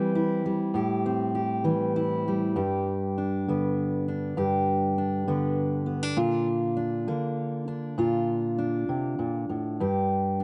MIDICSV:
0, 0, Header, 1, 2, 480
1, 0, Start_track
1, 0, Tempo, 603015
1, 589, Time_signature, 6, 3, 24, 8
1, 8309, End_track
2, 0, Start_track
2, 0, Title_t, "Steel-string acoustic guitar"
2, 0, Program_c, 0, 25
2, 0, Note_on_c, 0, 52, 57
2, 0, Note_on_c, 0, 55, 61
2, 0, Note_on_c, 0, 60, 55
2, 0, Note_on_c, 0, 64, 56
2, 112, Note_off_c, 0, 64, 0
2, 122, Note_on_c, 0, 64, 53
2, 360, Note_off_c, 0, 55, 0
2, 364, Note_on_c, 0, 55, 56
2, 561, Note_off_c, 0, 52, 0
2, 564, Note_off_c, 0, 60, 0
2, 588, Note_on_c, 0, 45, 65
2, 595, Note_off_c, 0, 64, 0
2, 601, Note_on_c, 0, 67, 62
2, 842, Note_on_c, 0, 60, 58
2, 1064, Note_off_c, 0, 67, 0
2, 1073, Note_on_c, 0, 67, 53
2, 1302, Note_off_c, 0, 55, 0
2, 1306, Note_on_c, 0, 52, 60
2, 1311, Note_on_c, 0, 55, 53
2, 1557, Note_off_c, 0, 67, 0
2, 1560, Note_on_c, 0, 64, 57
2, 1800, Note_off_c, 0, 55, 0
2, 1813, Note_on_c, 0, 55, 49
2, 2010, Note_off_c, 0, 52, 0
2, 2020, Note_off_c, 0, 60, 0
2, 2036, Note_on_c, 0, 43, 67
2, 2037, Note_off_c, 0, 64, 0
2, 2040, Note_on_c, 0, 67, 56
2, 2043, Note_off_c, 0, 45, 0
2, 2529, Note_on_c, 0, 62, 49
2, 2773, Note_on_c, 0, 50, 55
2, 2777, Note_off_c, 0, 55, 0
2, 2780, Note_on_c, 0, 59, 51
2, 3247, Note_off_c, 0, 62, 0
2, 3250, Note_on_c, 0, 62, 46
2, 3449, Note_off_c, 0, 43, 0
2, 3451, Note_off_c, 0, 67, 0
2, 3459, Note_off_c, 0, 59, 0
2, 3479, Note_on_c, 0, 43, 70
2, 3483, Note_on_c, 0, 67, 66
2, 3961, Note_off_c, 0, 62, 0
2, 3964, Note_on_c, 0, 62, 52
2, 4190, Note_off_c, 0, 50, 0
2, 4199, Note_on_c, 0, 50, 56
2, 4203, Note_on_c, 0, 59, 52
2, 4656, Note_off_c, 0, 59, 0
2, 4662, Note_off_c, 0, 62, 0
2, 4666, Note_on_c, 0, 59, 47
2, 4798, Note_off_c, 0, 59, 0
2, 4798, Note_on_c, 0, 62, 50
2, 4875, Note_off_c, 0, 43, 0
2, 4876, Note_off_c, 0, 67, 0
2, 4908, Note_on_c, 0, 46, 67
2, 4910, Note_off_c, 0, 62, 0
2, 4912, Note_on_c, 0, 65, 68
2, 5386, Note_on_c, 0, 62, 55
2, 5622, Note_off_c, 0, 46, 0
2, 5622, Note_off_c, 0, 50, 0
2, 5631, Note_on_c, 0, 50, 53
2, 5635, Note_on_c, 0, 58, 53
2, 6107, Note_off_c, 0, 62, 0
2, 6111, Note_on_c, 0, 62, 57
2, 6316, Note_off_c, 0, 65, 0
2, 6320, Note_off_c, 0, 58, 0
2, 6350, Note_on_c, 0, 46, 69
2, 6357, Note_on_c, 0, 65, 66
2, 6830, Note_off_c, 0, 62, 0
2, 6833, Note_on_c, 0, 62, 56
2, 7069, Note_off_c, 0, 46, 0
2, 7075, Note_on_c, 0, 48, 54
2, 7311, Note_off_c, 0, 48, 0
2, 7314, Note_on_c, 0, 46, 55
2, 7551, Note_off_c, 0, 46, 0
2, 7558, Note_on_c, 0, 45, 56
2, 7766, Note_off_c, 0, 65, 0
2, 7792, Note_off_c, 0, 45, 0
2, 7793, Note_off_c, 0, 50, 0
2, 7803, Note_on_c, 0, 43, 64
2, 7809, Note_on_c, 0, 67, 57
2, 8275, Note_off_c, 0, 62, 0
2, 8278, Note_on_c, 0, 62, 51
2, 8309, Note_off_c, 0, 43, 0
2, 8309, Note_off_c, 0, 62, 0
2, 8309, Note_off_c, 0, 67, 0
2, 8309, End_track
0, 0, End_of_file